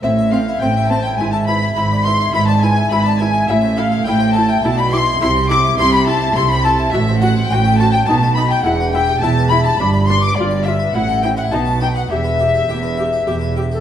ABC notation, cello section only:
X:1
M:3/4
L:1/8
Q:1/4=104
K:Am
V:1 name="Cello section" clef=bass
A,,2 A,,2 ^G,,2 | ^G,,2 G,,2 G,,2 | A,,2 A,,2 B,,2 | C,2 C,2 C,2 |
[K:Em] A,,2 A,,2 B,,2 | E,,2 E,,2 G,,2 | G,,2 A,,2 B,,2 | E,,2 E,,2 E,,2 |]